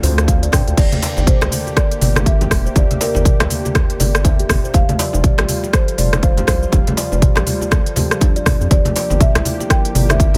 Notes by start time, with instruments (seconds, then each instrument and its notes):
Already playing: analog synth pad D3 C4 D4 F4
0.03 analog synth bass D2, kalimba C5, open hi-hat, muted conga, high conga, low conga, shaker
0.18 cross-stick, closed hi-hat, shaker
0.28 kalimba F5, kick, closed hi-hat, muted conga, shaker
0.43 analog synth bass D2, kalimba D5, closed hi-hat, shaker
0.52 analog synth bass G2, kalimba G5, kick, cross-stick, mid tom, open hi-hat, muted conga, low conga, shaker
0.67 analog synth bass D2, kalimba A4, closed hi-hat, shaker
0.77 analog synth bass G1, analog synth pad A#3 G4, kalimba G4, marimba D5, kick, closed hi-hat, crash, muted conga, djembe tone, shaker
0.92 closed hi-hat, high conga, shaker
1.02 kalimba D5, open hi-hat, djembe slap, shaker
1.17 analog synth bass G1, muted conga, djembe tone, shaker
1.27 kalimba G4, marimba C5, kick, closed hi-hat, mid tom, shaker
1.41 analog synth bass C2, kalimba G4, cross-stick, closed hi-hat, muted conga, djembe slap, shaker
1.51 open hi-hat, high conga, shaker
1.66 kalimba G4, muted conga, shaker
1.76 kalimba A#4, marimba D5, kick, cross-stick, closed hi-hat, shaker
1.91 closed hi-hat, shaker
2.01 analog synth bass G1, kalimba D5, mid tom, open hi-hat, muted conga, shaker
2.16 cross-stick, closed hi-hat, high conga, djembe tone, shaker
2.26 kalimba E5, marimba E5, kick, closed hi-hat, muted conga, shaker
2.41 kalimba G4, closed hi-hat, djembe tone, low conga, shaker
2.51 analog synth bass E1, kick, cross-stick, open hi-hat, muted conga, low conga, shaker
2.66 kalimba C5, shaker
2.76 analog synth bass G1, kalimba G4, marimba D5, kick, closed hi-hat, muted conga, djembe tone, shaker
2.91 closed hi-hat, high conga, shaker
3.01 marimba A#4, kalimba D5, open hi-hat, djembe slap, shaker
3.15 analog synth bass G1, muted conga, djembe tone, shaker
3.25 kalimba G4, kick, closed hi-hat, mid tom, shaker
3.40 analog synth bass C2, kalimba G4, cross-stick, closed hi-hat, muted conga, djembe slap, shaker
3.50 open hi-hat, high conga, shaker
3.65 kalimba G4, muted conga, high conga, shaker
3.75 kick, cross-stick, closed hi-hat, high conga, djembe tone, shaker
3.90 closed hi-hat, shaker
4.00 analog synth bass G1, kalimba D5, open hi-hat, muted conga, djembe tone, high conga, shaker
4.15 cross-stick, closed hi-hat, shaker
4.25 kalimba E5, kick, closed hi-hat, muted conga, djembe tone, shaker
4.39 kalimba G4, closed hi-hat, shaker
4.49 analog synth bass G1, kick, cross-stick, mid tom, open hi-hat, muted conga, low conga, shaker
4.64 kalimba C5, shaker
4.74 analog synth bass F1, analog synth pad F3 G3 F4, kalimba G4, marimba F5, kick, closed hi-hat, muted conga, djembe tone, shaker
4.89 closed hi-hat, high conga, shaker
4.99 kalimba D5, open hi-hat, djembe slap, shaker
5.13 analog synth bass F1, muted conga, djembe tone, shaker
5.24 kalimba G4, marimba D5, kick, closed hi-hat, mid tom, shaker
5.38 analog synth bass A1, kalimba G4, cross-stick, closed hi-hat, djembe slap, muted conga, shaker
5.49 open hi-hat, high conga, shaker
5.63 kalimba G4, muted conga, shaker
5.73 kalimba A4, marimba C5, kick, cross-stick, closed hi-hat, shaker
5.88 closed hi-hat, shaker
5.98 analog synth bass F1, marimba D5, kalimba D5, mid tom, open hi-hat, muted conga, shaker
6.13 cross-stick, closed hi-hat, high conga, djembe tone, shaker
6.23 marimba C5, kalimba F5, kick, closed hi-hat, muted conga, shaker
6.37 kalimba G4, closed hi-hat, djembe tone, low conga, shaker
6.47 analog synth bass C2, marimba C5, kick, cross-stick, open hi-hat, muted conga, low conga, shaker
6.63 kalimba C5, shaker
6.72 analog synth bass F1, kalimba G4, kick, closed hi-hat, muted conga, djembe tone, shaker
6.87 closed hi-hat, high conga, shaker
6.97 kalimba D5, open hi-hat, djembe slap, shaker
7.12 analog synth bass F1, muted conga, djembe tone, shaker
7.22 kalimba G4, kick, closed hi-hat, mid tom, shaker
7.36 analog synth bass A1, kalimba G4, cross-stick, closed hi-hat, djembe slap, muted conga, shaker
7.47 open hi-hat, high conga, shaker
7.61 kalimba G4, muted conga, high conga, shaker
7.71 kalimba A4, kick, cross-stick, closed hi-hat, djembe tone, high conga, shaker
7.86 closed hi-hat, shaker
7.96 kalimba G4, open hi-hat, muted conga, djembe tone, high conga, low conga, shaker
8.11 cross-stick, closed hi-hat, shaker
8.21 kalimba D4, kick, closed hi-hat, muted conga, djembe tone, shaker
8.36 kalimba D5, closed hi-hat, shaker
8.46 kick, cross-stick, mid tom, open hi-hat, muted conga, low conga, shaker
8.61 analog synth bass F2, kalimba G4, shaker
8.71 analog synth bass G1, analog synth pad A#3 G4, kalimba G4, marimba D5, kick, closed hi-hat, muted conga, djembe tone, shaker
8.85 closed hi-hat, high conga, shaker
8.96 kalimba D5, open hi-hat, djembe slap, shaker
9.10 analog synth bass G1, muted conga, djembe tone, shaker
9.21 marimba E5, kick, closed hi-hat, mid tom, shaker
9.35 analog synth bass C2, kalimba E4, cross-stick, closed hi-hat, djembe slap, muted conga, shaker
9.45 open hi-hat, high conga, shaker
9.60 kalimba G4, muted conga, shaker
9.70 kalimba A#4, marimba G5, kick, cross-stick, closed hi-hat, shaker
9.85 closed hi-hat, shaker
9.95 analog synth bass G1, kalimba D5, mid tom, open hi-hat, muted conga, shaker
10.09 marimba E5, cross-stick, closed hi-hat, djembe tone, high conga, shaker
10.20 kalimba E5, kick, closed hi-hat, muted conga, shaker
10.34 kalimba G4, closed hi-hat, djembe tone, low conga